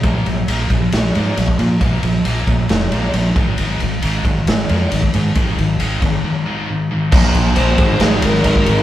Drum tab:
CC |----------------|----------------|----------------|----------------|
RD |x-x-x-x-x-x-x-x-|x-x-x-x-x-x-x-x-|x-x-x-x-x-x-x-x-|x-x-x-x---------|
SD |--------o-------|--------o-------|--------o-------|----------------|
BD |o-----o------o--|o-----o-------o-|------o------o--|o-----o---------|

CC |x---------------|
RD |--x-x-x-x-x-x-x-|
SD |--------o--o----|
BD |o-----o------o--|